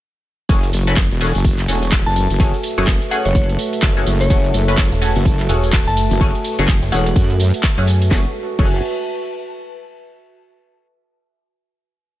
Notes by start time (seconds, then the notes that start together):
0.49 F#1 A3 C#4 F#4 G#4 A4, kick, closed hi-hat, ride, tambourine
0.63 closed hi-hat, tambourine
0.73 F#1, open hi-hat, ride, tambourine
0.84 A3 C#4 F#4 B4, closed hi-hat, tambourine
0.96 F#1 E5, kick, snare, clap, closed hi-hat, ride, tambourine
1.11 E1 A5, snare, closed hi-hat, tambourine
1.21 A3 C#4 F#4 G#4, snare, open hi-hat, tambourine
1.35 F#1, closed hi-hat, tambourine
1.44 kick, closed hi-hat, ride, tambourine
1.59 clap, closed hi-hat, tambourine
1.68 E1 A3 C#4 F#4 G#4, open hi-hat, ride, tambourine
1.83 closed hi-hat, tambourine
1.92 kick, snare, clap, closed hi-hat, ride, tambourine
2.06 F#1 A5, snare, tambourine
2.16 open hi-hat, ride, tambourine
2.30 F#1, snare, closed hi-hat, tambourine
2.40 A3 C#4 F#4 G#4, kick, closed hi-hat, ride, tambourine
2.54 closed hi-hat, tambourine
2.63 open hi-hat, ride, tambourine
2.78 F#1 A3 C#4 F#4 G#4, snare, closed hi-hat, tambourine
2.87 F#1, kick, snare, clap, closed hi-hat, ride, tambourine
3.02 closed hi-hat, tambourine
3.11 A3 C#4 F#4 G#4 F#5, open hi-hat, ride, tambourine
3.25 F#1 C#5, closed hi-hat, tambourine
3.35 kick, closed hi-hat, ride, tambourine
3.49 closed hi-hat, ride, tambourine
3.58 open hi-hat, ride, tambourine
3.73 closed hi-hat, tambourine
3.82 F#1, kick, snare, clap, closed hi-hat, ride, tambourine
3.97 A3 C#4 F#4 G#4, closed hi-hat, tambourine
4.06 F#1, snare, open hi-hat, ride, tambourine
4.21 C#5, closed hi-hat, tambourine
4.30 F#1 A3 C#4 F#4 G#4, kick, closed hi-hat, ride, tambourine
4.44 closed hi-hat, tambourine
4.54 F#1, open hi-hat, ride, tambourine
4.68 A3 C#4 F#4 B4, closed hi-hat, tambourine
4.78 F#1, kick, snare, clap, closed hi-hat, ride, tambourine
4.92 E1, snare, closed hi-hat, tambourine
5.02 A3 C#4 F#4 G#4, snare, open hi-hat, tambourine
5.16 F#1, closed hi-hat, tambourine
5.25 kick, closed hi-hat, ride, tambourine
5.40 clap, closed hi-hat, tambourine
5.49 E1 A3 C#4 F#4 G#4, open hi-hat, ride, tambourine
5.63 closed hi-hat, tambourine
5.73 kick, snare, clap, closed hi-hat, ride, tambourine
5.87 F#1 A5, snare, tambourine
5.97 open hi-hat, ride, tambourine
6.11 F#1, snare, closed hi-hat, tambourine
6.20 A3 C#4 F#4 G#4, kick, closed hi-hat, ride, tambourine
6.35 closed hi-hat, tambourine
6.44 open hi-hat, ride, tambourine
6.59 F#1 A3 C#4 F#4 G#4, snare, closed hi-hat, tambourine
6.68 F#1, kick, snare, clap, closed hi-hat, ride, tambourine
6.82 F#1, closed hi-hat, tambourine
6.92 E1 A3 C#4 F#4 G#4 F#5, open hi-hat, ride, tambourine
7.06 closed hi-hat, tambourine
7.16 F#2, kick, closed hi-hat, ride, tambourine
7.30 closed hi-hat, ride, tambourine
7.40 open hi-hat, ride, tambourine
7.54 closed hi-hat, tambourine
7.63 kick, snare, clap, closed hi-hat, ride, tambourine
7.78 F#2 A3 C#4 F#4 G#4, closed hi-hat, tambourine
7.87 snare, open hi-hat, ride, tambourine
8.02 closed hi-hat, tambourine
8.11 F#1 G#3 A3 C#4 F#4 G#4 A4, kick, snare
8.20 B4
8.27 E5
8.33 A5
8.59 F#1 A3 C#4 F#4 G#4, kick, crash